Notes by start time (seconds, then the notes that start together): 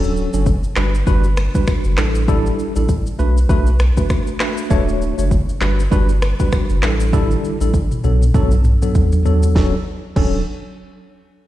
Already playing: D1 F#3 C#4 D4 A4
0.04 shaker
0.17 shaker
0.33 F#1 F#3 C#4 D4 A4, shaker
0.46 kick, shaker
0.64 shaker
0.76 G1 G3 D4 F#4 B4, finger snap, cross-stick, clap, shaker
0.95 shaker
1.06 G1 G3 D4 F#4 B4, kick, shaker
1.24 shaker
1.37 finger snap, cross-stick, shaker
1.54 G3 D4 F#4 B4, kick, shaker
1.67 finger snap, kick, cross-stick, shaker
1.84 F#1, shaker
1.97 A1 G3 D4 E4 A4, finger snap, cross-stick, clap, shaker
2.15 shaker
2.28 G3 D4 E4 A4, kick, shaker
2.46 shaker
2.59 shaker
2.76 A1 G3 D4 E4 A4, shaker
2.89 kick, shaker
3.06 shaker
3.19 B1 A3 D4 F#4 B4, shaker
3.37 shaker
3.49 B1 A3 D4 F#4 B4, kick, shaker
3.66 shaker
3.79 finger snap, cross-stick, shaker
3.97 A3 D4 F#4 B4, kick, shaker
4.10 finger snap, kick, cross-stick, shaker
4.27 shaker
4.40 A3 D4 F#4 B4, finger snap, cross-stick, clap, shaker
4.58 shaker
4.70 D1 A3 D4 F#4 C#5, kick, shaker
4.88 shaker
5.02 shaker
5.18 F#1 A3 D4 F#4 C#5, shaker
5.31 kick, shaker
5.49 shaker
5.61 G1 G3 D4 F#4 B4, finger snap, cross-stick, clap, shaker
5.80 shaker
5.91 G1 G3 D4 F#4 B4, kick, shaker
6.09 shaker
6.22 finger snap, cross-stick, shaker
6.39 G3 D4 F#4 B4, kick, shaker
6.52 finger snap, kick, cross-stick, shaker
6.69 F#1, shaker
6.82 A1 G3 D4 E4 A4, finger snap, cross-stick, clap, shaker
7.00 shaker
7.13 G3 D4 E4 A4, kick, high tom, shaker
7.31 high tom, shaker
7.44 high tom, shaker
7.61 A1 G3 D4 E4 A4, shaker
7.74 kick, shaker
7.91 mid tom, shaker
8.04 B1 F#3 B3 D4 A4, mid tom, shaker
8.22 mid tom, shaker
8.34 B1 F#3 B3 D4 A4, kick, mid tom, shaker
8.51 mid tom, shaker
8.64 mid tom, shaker
8.82 F#3 B3 D4 A4, mid tom, shaker
8.95 kick, floor tom, shaker
9.12 floor tom, shaker
9.25 F#3 B3 D4 A4, floor tom, shaker
9.43 floor tom, shaker
9.55 D1 F#3 C#4 D4 A4, kick, snare
10.16 D1 F#3 C#4 D4 A4, kick, crash